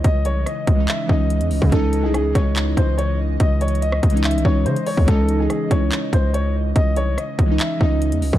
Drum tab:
HH |x-----x-----x-----x-----x-----------x--x--o-----|x-----x-----x-----x-----x-----x-----x-----------|x-----x-x-x-x-----x-x-x-x-x-x-------x--x--o-----|x-----x-----x-----x-----x-----x-----x-----------|
CP |------------------------x-----------------------|------------------------x-----------------------|------------------------x-----------------------|------------------------x-----------------------|
SD |------------r-----------------------------------|------------r-----------------------------------|---------------r--------------------------------|------------r-----------------------------------|
BD |o-----------------o-----------o--------------o--|o-----------------o-----------o-----------------|o-----------------o-----------o--------------o--|o-----------------o-----------o-----------------|

HH |x-----x-----x-----x-----x-----------x--x--o-----|
CP |------------------------x-----------------------|
SD |------------r-----------------------------------|
BD |o-----------------o-----------o--------------o--|